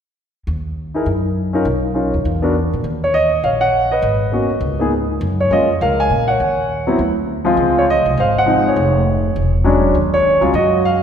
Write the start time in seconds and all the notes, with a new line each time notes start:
0.47 D#2
0.94 D#4 E4 G#4 A#4
1.06 F#2
1.53 C#4 D#4 F4 A#4
1.65 B1
1.94 C#4 D#4 F4 A#4
2.14 D#2
2.25 E2
2.42 B3 D4 F#4 A#4
2.73 A#2
2.84 D#2
3.04 C#5
3.14 D#5
3.44 A#1 C#5 F5
3.61 F#5
3.92 B4 D#5
4.02 G#1
4.32 A#3 B3 C#4 F#4
4.50 muted upright bass stroke
4.61 C#2
4.79 A#3 B3 D#4 G#4
5.21 F#2
5.41 C#5
5.50 F2 G#3 A#3 C#4 F4 D#5
5.81 C#2 A#4 F5
6.00 G#5
6.10 A#2
6.28 C#5 F#5
6.40 D#2
6.87 F#3 B3 C4 E4
6.99 D2
7.45 F3 G#3 C4 F4
7.57 C#2
7.79 C#5
7.90 D#5
8.06 C2
8.17 G#1 C5 F5
8.38 F#5
8.46 F3 G#3 C4 D#4
8.68 G#4 C#5
8.76 F1
9.36 E1
9.64 F#3 G#3 C#4 D4
9.95 D#2
10.14 C#5
10.41 C#2 F#3 G#3 C#4 F4
10.54 F#2 D#5
10.58 F#4
10.85 F5